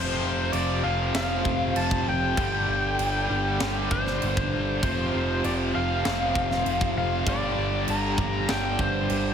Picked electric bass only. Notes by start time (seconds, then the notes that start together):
Already playing: F1
0.23 F1
0.53 F1
0.84 F1
1.14 F1
1.45 F1
1.76 F1
2.07 F1
2.38 G1
2.68 G1
2.99 G1
3.30 G1
3.61 G1
3.91 G1
4.23 G1
4.54 G1
4.83 F1
5.14 F1
5.44 F1
5.75 F1
6.06 F1
6.35 F1
6.66 F1
6.96 F1
7.27 G1
7.57 G1
7.88 G1
8.18 G1
8.50 G1
8.79 G1
9.10 G1